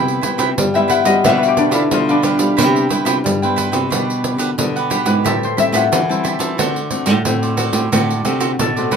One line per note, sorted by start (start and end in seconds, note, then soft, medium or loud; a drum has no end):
0.00 0.19 C3 loud
0.00 0.54 C3 medium
0.00 0.19 G3 soft
0.00 0.19 B3 medium
0.00 0.19 E4 medium
0.00 0.20 E4 medium
0.00 0.27 A4 medium
0.00 0.22 B4 medium
0.00 0.21 C5 medium
0.00 0.41 D5 medium
0.00 0.22 G5 medium
0.00 0.79 G5 medium
0.00 0.33 A5 loud
0.00 0.76 B5 loud
0.08 pandeiro soft
0.21 0.68 G3 medium
0.21 0.68 B3 medium
0.21 0.37 E4 soft
0.21 0.69 E4 medium
0.21 0.38 B4 medium
0.21 0.37 C5 medium
0.21 0.38 G5 medium
0.21 pandeiro medium
0.38 0.54 C3 medium
0.38 0.48 E4 medium
0.38 0.49 B4 medium
0.38 0.48 C5 medium
0.38 0.49 G5 medium
0.38 pandeiro medium
0.58 1.21 G2 medium
0.58 1.00 G3 medium
0.58 pandeiro medium
0.74 1.19 G3 medium
0.74 1.20 B3 medium
0.74 1.20 E4 medium
0.74 0.88 B4 soft
0.74 0.87 C5 soft
0.74 1.12 E5 medium
0.74 0.89 G5 medium
0.74 pandeiro soft
0.88 1.05 E4 medium
0.88 1.04 B4 medium
0.88 1.05 C5 medium
0.88 1.54 F#5 loud
0.88 1.03 G5 medium
0.88 pandeiro medium
1.04 1.23 G3 medium
1.04 1.22 B4 soft
1.04 1.22 C5 soft
1.04 1.32 D#5 medium
1.04 1.21 G5 soft
1.04 pandeiro medium
1.24 1.88 B2 medium
1.24 1.73 B2 medium
1.24 1.68 G3 medium
1.24 1.70 D4 medium
1.24 1.68 D4 medium
1.24 1.68 F4 medium
1.24 1.71 G4 medium
1.24 1.71 B4 medium
1.24 1.99 E5 loud
1.24 1.71 F5 medium
1.24 pandeiro medium
1.38 3.43 B4 medium
1.43 pandeiro soft
1.48 3.84 G4 medium
1.57 2.10 D4 medium
1.57 pandeiro medium
1.71 1.88 D3 medium
1.71 1.82 D4 medium
1.71 1.99 E4 medium
1.71 1.82 G4 medium
1.71 1.82 B4 medium
1.71 1.82 F5 medium
1.71 pandeiro medium
1.91 2.55 B2 medium
1.91 2.34 D3 medium
1.91 2.20 G3 medium
1.91 2.20 D4 medium
1.91 2.20 F4 medium
1.91 4.45 F4 medium
1.91 pandeiro medium
2.09 4.90 D4 medium
2.09 2.22 G4 soft
2.09 2.23 B4 soft
2.09 2.24 F5 soft
2.09 pandeiro soft
2.22 2.52 G3 medium
2.22 2.39 D4 medium
2.22 2.52 D4 medium
2.22 2.52 F4 medium
2.22 2.39 G4 medium
2.22 2.38 B4 medium
2.22 2.37 F5 medium
2.22 pandeiro medium
2.38 2.57 G3 medium
2.38 2.56 G4 soft
2.38 2.55 B4 soft
2.38 2.55 F5 soft
2.38 pandeiro medium
2.57 3.21 C3 medium
2.57 2.86 C3 loud
2.57 2.86 G3 medium
2.57 2.86 B3 medium
2.57 2.88 E4 medium
2.57 2.86 E4 medium
2.57 2.90 B4 medium
2.57 2.89 C5 medium
2.57 2.91 G5 medium
2.57 pandeiro medium
2.76 pandeiro soft
2.89 3.36 G3 medium
2.89 3.36 B3 medium
2.89 3.04 E4 soft
2.89 3.36 E4 medium
2.89 3.05 B4 medium
2.89 3.05 C5 medium
2.89 3.06 G5 medium
2.89 pandeiro medium
3.05 3.21 C3 medium
3.05 3.16 E4 medium
3.05 3.16 B4 medium
3.05 3.16 C5 medium
3.05 3.17 G5 medium
3.05 pandeiro medium
3.24 3.89 G2 medium
3.24 3.67 G3 medium
3.24 pandeiro medium
3.42 3.87 G3 medium
3.42 3.87 B3 medium
3.42 3.88 E4 medium
3.42 3.56 B4 soft
3.42 3.56 C5 soft
3.42 3.57 G5 medium
3.42 pandeiro soft
3.56 3.73 E4 medium
3.56 3.72 B4 medium
3.56 3.73 C5 medium
3.56 3.71 G5 medium
3.56 pandeiro medium
3.72 3.91 C3 medium
3.72 3.89 B4 soft
3.72 3.90 C5 soft
3.72 3.89 G5 soft
3.72 pandeiro medium
3.91 4.39 B2 loud
3.91 4.55 B2 medium
3.91 4.53 G3 medium
3.91 4.37 D4 medium
3.91 4.53 D4 medium
3.91 4.37 G4 medium
3.91 4.38 B4 medium
3.91 4.39 F#5 medium
3.91 pandeiro medium
4.10 pandeiro soft
4.24 pandeiro medium
4.38 4.54 D3 medium
4.38 4.49 D4 medium
4.38 4.49 G4 medium
4.38 4.50 B4 medium
4.38 4.50 F#5 medium
4.38 pandeiro medium
4.58 5.22 B2 medium
4.58 5.01 D3 medium
4.58 4.78 G3 medium
4.58 4.78 D4 medium
4.58 4.79 F#4 medium
4.58 pandeiro medium
4.76 4.90 G4 soft
4.76 4.90 B4 soft
4.76 4.91 F#5 medium
4.76 pandeiro soft
4.90 5.19 G3 medium
4.90 5.06 D4 medium
4.90 5.20 D4 medium
4.90 5.20 F#4 medium
4.90 5.07 G4 medium
4.90 5.06 B4 medium
4.90 5.04 F#5 medium
4.90 pandeiro medium
5.05 5.24 G#2 medium
5.05 5.23 G4 soft
5.05 5.23 B4 soft
5.05 5.51 B4 medium
5.05 5.23 F#5 medium
5.05 pandeiro medium
5.24 5.53 A2 loud
5.24 5.89 A2 medium
5.24 5.45 G3 medium
5.24 5.45 C4 medium
5.24 5.45 E4 medium
5.24 5.56 G4 medium
5.24 7.46 A4 medium
5.24 5.57 C5 medium
5.24 5.57 E5 medium
5.24 5.58 A5 medium
5.24 pandeiro medium
5.43 7.42 C5 medium
5.43 pandeiro soft
5.57 6.03 G3 medium
5.57 6.03 C4 medium
5.57 6.03 E4 medium
5.57 5.72 G4 medium
5.57 5.72 C5 medium
5.57 5.72 E5 medium
5.57 7.32 E5 medium
5.57 5.73 A5 medium
5.57 pandeiro medium
5.72 5.88 A2 medium
5.72 5.83 G4 medium
5.72 5.83 C5 medium
5.72 5.84 E5 medium
5.72 7.36 F#5 medium
5.72 5.84 A5 medium
5.72 pandeiro medium
5.91 6.55 E3 medium
5.91 6.35 E3 medium
5.91 pandeiro medium
6.09 6.54 G3 medium
6.09 6.54 C4 medium
6.09 6.54 E4 medium
6.09 6.23 C5 soft
6.09 6.24 E5 soft
6.09 6.25 A5 soft
6.09 pandeiro soft
6.24 6.40 G4 medium
6.24 6.41 C5 medium
6.24 6.40 E5 medium
6.24 6.38 A5 medium
6.24 pandeiro medium
6.39 6.59 E3 medium
6.39 6.58 C5 soft
6.39 6.57 E5 soft
6.39 6.56 A5 medium
6.39 pandeiro medium
6.58 7.22 D3 medium
6.58 7.09 D3 loud
6.58 6.78 A3 medium
6.58 6.79 C4 medium
6.58 7.05 F#4 medium
6.58 6.79 F#4 medium
6.58 7.06 A4 medium
6.58 7.06 C5 medium
6.58 7.06 D5 medium
6.58 pandeiro medium
6.76 pandeiro soft
6.91 7.12 A3 medium
6.91 7.12 C4 medium
6.91 7.12 F#4 medium
6.91 pandeiro medium
7.06 7.22 A2 loud
7.06 7.17 F#4 medium
7.06 7.17 A4 medium
7.06 7.17 C5 medium
7.06 7.17 D5 medium
7.06 pandeiro medium
7.25 7.68 A2 medium
7.25 7.90 A2 medium
7.25 7.54 A3 medium
7.25 7.54 C4 medium
7.25 7.55 F#4 medium
7.25 pandeiro medium
7.42 7.57 A4 soft
7.42 7.58 C5 soft
7.42 7.58 D5 soft
7.42 pandeiro soft
7.57 7.87 A3 medium
7.57 7.87 C4 medium
7.57 7.74 F#4 medium
7.57 7.87 F#4 medium
7.57 7.74 A4 medium
7.57 7.73 C5 medium
7.57 7.72 D5 medium
7.57 pandeiro medium
7.73 7.88 A2 medium
7.73 7.91 A4 soft
7.73 7.91 C5 soft
7.73 7.90 D5 medium
7.73 pandeiro medium
7.92 8.21 A2 loud
7.92 8.57 D3 medium
7.92 8.13 A3 medium
7.92 8.13 C4 medium
7.92 8.24 F#4 medium
7.92 8.13 F#4 medium
7.92 8.25 A4 medium
7.92 8.25 C5 medium
7.92 8.26 D5 medium
7.92 pandeiro medium
8.10 pandeiro soft
8.25 8.56 C3 medium
8.25 8.57 A3 medium
8.25 8.57 C4 medium
8.25 8.39 F#4 medium
8.25 8.57 F#4 medium
8.25 8.39 A4 medium
8.25 8.40 C5 medium
8.25 8.40 D5 medium
8.25 pandeiro medium
8.40 8.51 F#4 medium
8.40 8.51 A4 medium
8.40 8.51 C5 medium
8.40 8.51 D5 medium
8.40 pandeiro medium
8.59 8.96 A2 medium
8.59 8.90 B2 medium
8.59 8.96 A4 medium
8.59 pandeiro medium
8.76 8.96 A3 medium
8.76 8.96 C4 medium
8.76 8.96 F#4 medium
8.76 8.91 A4 soft
8.76 8.91 C5 soft
8.76 8.92 D5 medium
8.76 pandeiro soft
8.91 8.96 A2 medium
8.91 8.96 F#4 medium
8.91 8.96 A4 medium
8.91 8.96 B4 medium
8.91 8.96 C5 medium
8.91 pandeiro medium